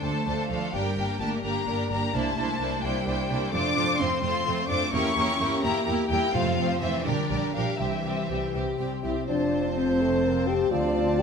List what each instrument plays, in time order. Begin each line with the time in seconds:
Already playing: harp D3 F3 C4 F4 A4 F5 A5
0.03 double bass section D2, cello section A3, viola section A3 D4, violin section A4 C5 A5, harp C5
0.26 double bass section D2, viola section A3 D4, violin section A4 C5, harp F5
0.49 double bass section D2, cello section F3, viola section A3 D4, violin section A4 C5 F5, harp C5
0.73 double bass section G1, harp G2, cello section G3, viola section A#3 D4, violin section G4 A#4 G5
0.97 double bass section G1, harp A#3, viola section A#3 D4, violin section G4 A#4
1.20 double bass section G1, cello section A3, viola section A#3 D4, harp G4, violin section G4 A#4 A5
1.44 double bass section G1, viola section A#3 D4, cello section A#3, violin section G4 A#4 A#5, harp A#4
1.67 double bass section G1, viola section A#3 D4, violin section G4 A#4, harp D5
1.90 double bass section G1, viola section A#3 D4, cello section A#3, violin section G4 A#4 A#5, harp A#4
2.13 double bass section C2, harp C3, cello section A3, viola section A#3 D4, violin section E4 C5 A5
2.36 double bass section C2, viola section A#3 D4, harp A#3, violin section E4 C5
2.60 double bass section C2, viola section A#3 D4, harp E4, violin section E4 C5
2.82 double bass section C2, cello section G3, viola section A#3 D4, violin section E4 C5 G5, harp A#4
3.05 double bass section C2, viola section A#3 D4, violin section E4 C5, harp D5
3.28 double bass section C2, viola section A#3 D4, violin section E4 C5, harp A#4
3.52 harp F2, double bass section F2, viola section A3 C4, cello section D4, violin section F4 C5 D6
3.76 double bass section F2, viola section A3 C4, harp A3, violin section F4 C5
3.99 double bass section F2, viola section A3 C4, cello section C4, harp F4, violin section F4 C5 C6
4.22 double bass section F2, viola section A3 C4, cello section C4, violin section F4 C5 C6, harp A4
4.45 double bass section F2, viola section A3 C4, violin section F4 C5, harp C5
4.69 double bass section F2, viola section A3 C4, cello section D4, violin section F4 C5 D6, harp A4
4.92 double bass section E2, harp E2, viola section A#3 E4, cello section C#4, violin section G4 A#4 C#6
5.16 double bass section E2, harp A#3, viola section A#3 E4, violin section G4 A#4
5.40 double bass section E2, viola section A#3 E4, harp G4, violin section G4 A#4
5.63 double bass section E2, cello section A#3, viola section A#3 E4, violin section G4 A#4 A#5, harp A#4
5.87 double bass section E2, viola section A#3 E4, harp G4, violin section G4 A#4
6.10 double bass section E2, cello section G3, viola section A#3 E4, violin section G4 A#4 G5, harp A#4
6.33 double bass section F2, timpani F2, harp F2, cello section F3, viola section A3 C4, violin section F4 C5 F5
6.58 double bass section F2, viola section A3 C4, harp A3, violin section F4 C5
6.81 double bass section F2, cello section E3, viola section A3 C4, harp C4 F4, violin section F4 C5 E5
7.05 double bass section A#1, harp A#2, cello section D3, viola section G3 D4, violin section G4 A#4 D5
7.30 double bass section A#1, viola section G3 D4, harp G3, violin section G4 A#4
7.55 double bass section A#1, cello section F3, viola section G3 D4, harp D4 G4, violin section G4 A#4 F5
7.79 double bass section C2, timpani C3, harp C3, cello section E3, viola section G3 C4, violin section G4 E5
8.05 double bass section C2, viola section G3 C4, harp C4, violin section G4
8.29 double bass section C2, viola section G3 C4, harp G4, violin section G4
8.53 double bass section C2, viola section G3 C4, violin section G4, harp C5
8.79 double bass section C2, viola section G3 C4, violin section G4, harp G5
9.03 double bass section C2, viola section G3 C4, french horn section E4, violin section G4, harp C5, flute E5
9.28 double bass section F1, cello section F2, bassoon F3, harp F3, viola section C4, french horn section D4, violin section C5 A5, flute D5
9.53 harp C4
9.76 french horn section C4, harp A4, flute C5
10.00 bassoon A3, harp C5
10.24 bassoon A#3, harp F5
10.48 bassoon C4, french horn section G4, harp C5, flute G5
10.71 cello section D2, double bass section D2, harp D3, bassoon D4, french horn section F4, violin section D5, flute F5
10.96 harp C4
11.19 flute G5